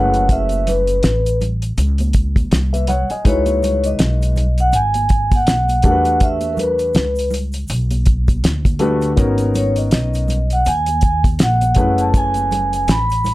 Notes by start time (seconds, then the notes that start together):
Already playing: F#1 A3 C#4 E4 G#4 B4 F#5
0.14 closed hi-hat, shaker
0.29 E5, kick, closed hi-hat, shaker
0.49 closed hi-hat, high conga, shaker
0.67 B4, closed hi-hat, low conga, shaker
0.87 closed hi-hat, shaker
1.03 A1, snare, closed hi-hat, shaker
1.26 closed hi-hat, shaker
1.41 closed hi-hat, low conga, shaker
1.62 closed hi-hat, shaker
1.78 C#2, closed hi-hat, shaker
1.98 closed hi-hat, high conga, shaker
2.13 kick, closed hi-hat, shaker
2.36 kick, closed hi-hat, high conga, shaker
2.51 C2, snare, closed hi-hat, high conga, shaker
2.73 B4 E5, closed hi-hat, high conga, shaker
2.87 C#5 F#5, closed hi-hat, low conga, shaker
3.10 D#5 G#5, muted upright bass stroke, closed hi-hat, shaker
3.24 C#2 G#3 D#4 E4 F#4 B4 C#5, kick, closed hi-hat, shaker
3.46 closed hi-hat, high conga, shaker
3.63 closed hi-hat, low conga, shaker
3.84 D#5, closed hi-hat, shaker
3.99 B1, snare, closed hi-hat, shaker
4.22 closed hi-hat, shaker
4.36 closed hi-hat, low conga, shaker
4.58 F#5, closed hi-hat, shaker
4.73 G#1 G#5, closed hi-hat, shaker
4.94 closed hi-hat, high conga, shaker
5.09 kick, closed hi-hat, shaker
5.32 F#5, kick, closed hi-hat, high conga, shaker
5.47 B1, snare, closed hi-hat, high conga, shaker
5.69 closed hi-hat, high conga, shaker
5.82 E2 A3 D4 F#4 G4 A#4 F#5, kick, closed hi-hat, low conga, shaker
5.91 B4
6.05 closed hi-hat, shaker
6.20 E5, kick, closed hi-hat, shaker
6.41 closed hi-hat, high conga, shaker
6.53 A#4
6.57 B4, closed hi-hat, low conga, shaker
6.79 closed hi-hat, shaker
6.94 C#2, snare, closed hi-hat, shaker
7.16 closed hi-hat, shaker
7.30 closed hi-hat, low conga, shaker
7.52 closed hi-hat, shaker
7.68 B1, closed hi-hat, shaker
7.91 closed hi-hat, high conga, shaker
8.06 kick, closed hi-hat, shaker
8.28 kick, closed hi-hat, high conga, shaker
8.44 D2, snare, closed hi-hat, high conga, shaker
8.65 kick, closed hi-hat, high conga, shaker
8.79 A3 D4 F#4 G4 B4, closed hi-hat, low conga, shaker
9.01 closed hi-hat, shaker
9.16 G#1 B3 C#4 D#4 F#4 A#4, kick, closed hi-hat, shaker
9.38 closed hi-hat, high conga, shaker
9.55 C#5, closed hi-hat, low conga, shaker
9.76 D#5, closed hi-hat, shaker
9.91 B1 D#5, snare, closed hi-hat, shaker
10.14 closed hi-hat, shaker
10.28 closed hi-hat, low conga, shaker
10.50 F#5, closed hi-hat, shaker
10.65 D#2 G#5, closed hi-hat, shaker
10.86 closed hi-hat, high conga, shaker
11.01 G#5, kick, closed hi-hat, shaker
11.24 kick, closed hi-hat, high conga, shaker
11.39 A#1 F#5, snare, closed hi-hat, high conga, shaker
11.61 closed hi-hat, high conga, shaker
11.75 F#1 A3 C#4 E4 G#4 B4, kick, closed hi-hat, low conga, shaker
11.98 A5, closed hi-hat, shaker
12.14 G#5, kick, closed hi-hat, shaker
12.34 closed hi-hat, high conga, shaker
12.51 closed hi-hat, low conga, shaker
12.73 G#5, closed hi-hat, shaker
12.88 A1 B5, snare, closed hi-hat, shaker
13.10 closed hi-hat, shaker
13.24 closed hi-hat, low conga, shaker